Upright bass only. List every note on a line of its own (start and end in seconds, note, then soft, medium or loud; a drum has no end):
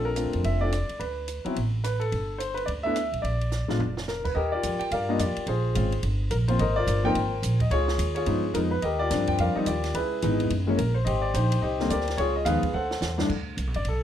0.00 0.23 A#1 medium
0.25 0.34 D2 medium
0.34 0.43 F2 medium
0.44 0.86 F1 medium
0.89 muted upright bass stroke soft
1.00 1.42 D2 medium
1.45 muted upright bass stroke soft
1.56 2.09 A1 medium
2.12 2.65 G1 medium
2.67 3.10 D2 medium
3.12 3.23 B1 medium
3.23 3.66 A#1 medium
3.69 3.79 A1 medium
3.79 4.33 F1 medium
4.35 4.63 D#2 medium
4.63 4.80 F2 medium
4.80 muted upright bass stroke soft
4.91 5.18 G2 medium
5.19 5.35 F2 medium
5.37 muted upright bass stroke soft
5.47 5.74 A#1 medium
5.75 6.02 G#1 medium
6.03 6.30 G1 medium
6.31 6.58 A#1 medium
6.59 6.86 G#1 medium
6.87 7.14 G1 medium
7.15 7.42 G#1 medium
7.42 7.70 A#1 medium
7.70 7.98 C#2 medium
7.98 8.26 D#2 medium
8.27 8.53 G2 medium
8.54 8.82 F2 medium
8.82 9.10 D#2 medium
9.11 9.38 G2 medium
9.39 9.55 F2 medium
9.55 muted upright bass stroke soft
9.66 9.94 D#2 medium
9.94 10.21 C#2 medium
10.23 10.50 G#1 medium
10.50 10.77 F#1 medium
10.78 11.05 A#1 medium
11.06 11.33 G#1 medium
11.34 11.61 A#1 loud
11.62 11.89 C2 medium
11.90 12.17 D2 medium
12.18 12.45 C#2 medium
12.45 12.61 D#2 medium
12.63 muted upright bass stroke soft
12.73 13.00 D2 medium
13.01 13.28 E2 medium
13.29 13.56 D2 medium
13.57 13.67 C2 medium
13.67 13.75 B1 medium
13.75 13.84 G1 medium
13.85 14.03 B1 medium